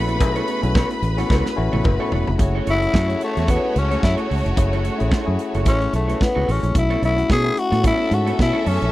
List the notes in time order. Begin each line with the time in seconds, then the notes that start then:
Already playing: A#1 A3 C#4 E4 F#4 G#4 B4 B5
0.08 B3 E4 A4 C#5, closed hi-hat
0.20 B1 A3 C#4 E4 G#4, muted clean electric guitar stroke, kick, closed hi-hat, cowbell
0.36 B3 E4 A4 C#5, closed hi-hat
0.48 B3 E4 A4 C#5, closed hi-hat
0.62 B1 A3 C#4 E4 F#4, muted clean electric guitar stroke, closed hi-hat
0.75 B3 E4 A4 C#5, kick, snare, cowbell
0.91 muted clean electric guitar stroke, closed hi-hat
1.02 A1, muted clean electric guitar stroke, closed hi-hat
1.17 A3 B3 C#4 E4 F#4 A4 C#5, snare, closed hi-hat
1.30 C#2 B3 E4 A4 C#5, kick, snare, cowbell
1.46 muted clean electric guitar stroke, snare
1.56 A1 A3 C#4 E4 F#4, muted clean electric guitar stroke
1.72 A1 B3 E4 A4 C#5, high tom
1.84 F#1, muted clean electric guitar stroke, kick, mid tom, cowbell
1.99 A3 B3 C#4 E4 F#4 A4 C#5
2.12 E1 B3 E4 A4 C#5, floor tom
2.27 F1, muted clean electric guitar stroke, floor tom
2.38 F#1 A3 C#4 E4 F#4 G#4 C#5, muted clean electric guitar stroke, kick, closed hi-hat
2.55 A3 E4 F#4 C#5
2.66 F#1 A3 E4 F#4 C#5, closed hi-hat
2.70 E4
2.81 A3 C#4 E4 F#4, muted clean electric guitar stroke, closed hi-hat
2.94 F#2 A3 E4 F#4 C#5, kick, snare
3.08 A3 C#4 E4 G#4, muted clean electric guitar stroke, closed hi-hat
3.21 A3, muted clean electric guitar stroke, closed hi-hat
3.36 E2 A3 E4 F#4 C#5, snare, closed hi-hat
3.47 A3 B3 C#4 E4 F#4 G#4 C#5, kick, closed hi-hat
3.63 muted clean electric guitar stroke
3.75 C#2 C#4, muted clean electric guitar stroke, closed hi-hat
3.90 A3 C#4 E4 F#4 G#4 C#5, closed hi-hat
4.02 F#2 E4, muted clean electric guitar stroke, kick, snare
4.16 A3 C#4 E4 F#4 G#4 C#5, closed hi-hat
4.29 C#2 A3 E4 F#4 C#5, open hi-hat
4.45 F1, muted clean electric guitar stroke, closed hi-hat
4.56 F#1 A3 C#4 E4 G#4, muted clean electric guitar stroke, kick, closed hi-hat
4.73 A3 E4 F#4 C#5, closed hi-hat
4.85 A3 E4 F#4 C#5, closed hi-hat
4.98 A1 A3 C#4 E4 G#4, muted clean electric guitar stroke, closed hi-hat
5.11 A3 E4 F#4 C#5, kick, snare
5.25 F#2 A3 C#4 E4 G#4, muted clean electric guitar stroke
5.39 muted clean electric guitar stroke, closed hi-hat
5.54 F#1 A3 E4 F#4 C#5, closed hi-hat
5.65 A1 A3 C#4 E4 F#4 G#4 C#5, kick, closed hi-hat
5.81 muted clean electric guitar stroke, closed hi-hat
5.93 B1 A3, muted clean electric guitar stroke, closed hi-hat
6.08 A3 C#4 E4 F#4 B4 C#5, closed hi-hat
6.20 B3, muted clean electric guitar stroke, kick, snare
6.35 C#2 A3 C#4 E4 F#4 G#4 C#5
6.47 A1 A3 E4 F#4 C#5, open hi-hat
6.51 C#4
6.63 A#1, muted clean electric guitar stroke, closed hi-hat
6.74 B1 A3 C#4 E4 F#4, muted clean electric guitar stroke, kick, closed hi-hat
6.90 B3 E4 A4 C#5, closed hi-hat
7.02 B1 B3 E4 A4 C#5, closed hi-hat
7.17 A3 C#4 E4 F#4, muted clean electric guitar stroke, closed hi-hat
7.29 B2 B3 E4 G#4 A4 C#5, kick, snare
7.44 A3 C#4 E4 F#4, muted clean electric guitar stroke, closed hi-hat
7.57 F#4, muted clean electric guitar stroke, closed hi-hat
7.71 A2 B3 E4 A4 C#5, snare, closed hi-hat
7.83 A3 B3 C#4 E4 F#4 A4 C#5 E5, kick, closed hi-hat
8.00 muted clean electric guitar stroke
8.11 G#2 F#4, muted clean electric guitar stroke, closed hi-hat
8.26 A3 B3 C#4 E4 A4 C#5, closed hi-hat
8.38 B2 E4, muted clean electric guitar stroke, kick, snare
8.53 A3 B3 C#4 E4 G#4 A4 C#5
8.65 F#2 B3 C#4 E4 A4 C#5, open hi-hat
8.81 A#1, muted clean electric guitar stroke, closed hi-hat